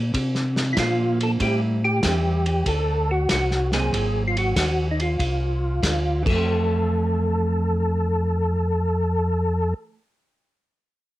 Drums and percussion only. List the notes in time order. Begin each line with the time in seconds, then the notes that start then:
0.14 kick, ride
0.35 snare
0.56 snare, ride
0.77 kick, snare, hi-hat pedal, ride
1.21 ride
1.40 kick, ride
2.03 kick, snare, hi-hat pedal, ride
2.46 ride
2.66 kick, ride
3.29 kick, snare, hi-hat pedal, ride
3.51 snare
3.72 snare, ride
3.93 kick, ride
4.37 ride
4.56 kick, snare, hi-hat pedal, ride
5.00 ride
5.19 kick, ride
5.83 kick, snare, hi-hat pedal, ride
6.26 kick, crash